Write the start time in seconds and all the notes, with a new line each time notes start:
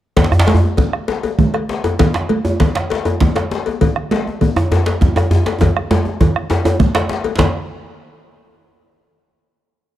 0.17 bombo rim, bombo low, cowbell, djembe slap, low conga, djembe bass
0.24 djembe slap
0.32 bombo rim, djembe bass
0.39 djembe slap
0.47 cowbell, djembe slap, high conga
0.55 djembe bass
0.63 djembe tone
0.77 bombo low, cowbell, djembe bass, low conga
0.93 bombo rim
1.08 cowbell, djembe slap, high conga
1.23 cowbell, djembe tone
1.39 bombo low, djembe slap, high conga, low conga, djembe bass
1.54 bombo rim, cowbell
1.69 djembe slap, high conga
1.84 cowbell, djembe tone
1.99 bombo rim, bombo low, cowbell, djembe slap, low conga, djembe bass
2.14 bombo rim, djembe slap
2.29 cowbell, high conga
2.45 djembe tone
2.60 bombo rim, bombo low, cowbell, djembe slap, low conga, djembe bass
2.75 bombo rim, djembe slap
2.90 cowbell, djembe slap, high conga
3.05 cowbell, djembe tone
3.20 bombo low, djembe slap, high conga, low conga, djembe bass
3.36 bombo rim, cowbell, djembe slap
3.51 djembe slap, high conga
3.66 cowbell, djembe tone
3.81 bombo rim, bombo low, cowbell, low conga, djembe bass
3.96 bombo rim
4.11 cowbell, djembe slap, high conga
4.27 djembe tone
4.41 bombo rim, bombo low, cowbell, low conga, djembe bass
4.56 bombo rim, djembe tone
4.72 cowbell, djembe slap, high conga, djembe bass
4.86 cowbell, djembe slap, djembe tone
5.01 bombo low, djembe slap, djembe tone, high conga, djembe bass, low conga
5.16 bombo rim, cowbell, djembe tone
5.31 djembe slap, high conga, djembe bass
5.46 cowbell, djembe slap, djembe tone
5.61 bombo rim, bombo low, cowbell, djembe slap, djembe tone, djembe bass, low conga
5.76 bombo rim, djembe slap, high conga
5.91 bombo rim, cowbell, djembe slap, djembe tone, high conga
6.05 djembe slap, djembe tone, high conga
6.20 bombo low, cowbell, djembe slap, djembe tone, djembe bass, low conga
6.35 bombo rim, djembe slap
6.50 cowbell, djembe slap, djembe tone
6.64 bombo rim, cowbell, djembe tone, high conga
6.79 bombo rim, bombo low, high conga, djembe bass, low conga
6.95 bombo rim, cowbell, djembe slap, high conga
7.09 djembe slap
7.24 cowbell, djembe slap, djembe tone
7.38 bombo low, cowbell, djembe slap, low conga, djembe bass